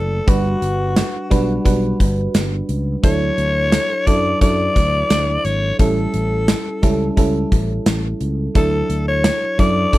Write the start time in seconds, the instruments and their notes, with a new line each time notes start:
Already playing: fretless electric bass F#1, fm electric piano A3 E4 F#4 D5, alto saxophone A4
0.27 fretless electric bass G1, fm electric piano G3 D4 F#4 B4, alto saxophone F#4, kick, closed hi-hat
0.62 fretless electric bass G1, closed hi-hat
0.96 snare, closed hi-hat
1.30 fretless electric bass B1, fm electric piano G3 D4 F#4 B4, kick, closed hi-hat
1.65 fretless electric bass B1, fm electric piano G3 D4 F#4 B4, kick, closed hi-hat
2.00 fretless electric bass G1, kick, closed hi-hat
2.34 fretless electric bass G1, snare, closed hi-hat
2.69 fretless electric bass C#2, closed hi-hat
3.03 fretless electric bass D2, fm electric piano F#3 D4 E4 A4, alto saxophone C#5, kick, closed hi-hat
3.38 fretless electric bass D2, closed hi-hat
3.72 snare, closed hi-hat
4.06 fretless electric bass F#2, fm electric piano F#3 D4 E4 A4, alto saxophone D5, kick, closed hi-hat
4.41 fretless electric bass F#2, fm electric piano F#3 D4 E4 A4, alto saxophone D5, kick, closed hi-hat
4.76 fretless electric bass D2, kick, closed hi-hat
5.10 fretless electric bass D2, snare, closed hi-hat
5.45 fretless electric bass G#1, alto saxophone C#5, closed hi-hat
5.79 fretless electric bass A1, fm electric piano G3 C#4 E4 A4, alto saxophone A4, kick, closed hi-hat
6.14 fretless electric bass A1, closed hi-hat
6.48 snare, closed hi-hat
6.82 fretless electric bass C#2, fm electric piano G3 C#4 E4 A4, kick, closed hi-hat
7.17 fretless electric bass C#2, fm electric piano G3 C#4 E4 A4, kick, closed hi-hat
7.52 fretless electric bass A1, kick, closed hi-hat
7.86 fretless electric bass A1, snare, closed hi-hat
8.21 fretless electric bass C#2, closed hi-hat
8.55 fretless electric bass D2, fm electric piano F#3 D4 E4 A4, alto saxophone A4, kick, closed hi-hat
8.90 fretless electric bass D2, closed hi-hat
9.08 alto saxophone C#5
9.24 snare, closed hi-hat
9.58 fretless electric bass F#2, fm electric piano F#3 D4 E4 A4, alto saxophone D5, kick, closed hi-hat
9.93 fretless electric bass F#2, fm electric piano F#3 D4 E4 A4, kick, closed hi-hat